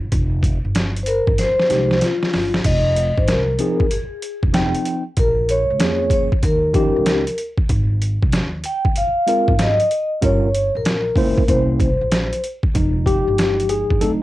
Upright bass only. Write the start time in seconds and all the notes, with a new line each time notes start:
0.12 F1
0.65 G1
1.28 G1
1.70 C2
2.34 G1
2.65 F1
3.18 G#1
3.28 C2
4.43 F1
5.17 A#1
5.70 C#2
5.81 F2
6.43 D#2
6.96 C#2
7.70 G#1
8.23 C2
8.33 D#2
9.48 G#1
10.23 G1
10.75 A#1
11.16 C#2
11.49 C2
12.01 A#1
12.75 F1
13.28 G1
13.91 G1
14.01 D2